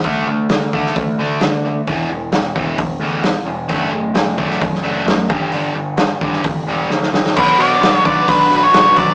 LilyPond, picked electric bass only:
\new Staff \with { instrumentName = "Picked electric bass" } { \clef bass \time 4/4 \key b \minor \tempo 4 = 131 d,8 d,8 d,4 d,8 d,8 d4 | e,,8 e,,8 e,,8 e,,8 e,,8 d,8 b,,8 e,,8 | fis,,8 fis,,8 fis,,4 fis,,8 fis,,8 fis,8 g,,8 | g,,8 g,,8 g,,8 g,,8 g,,8 e,,8 d,8 g,,8 |
b,,8 b,8 b,,8 b,,8 b,,8 b,,8 b,,8 b,,8 | }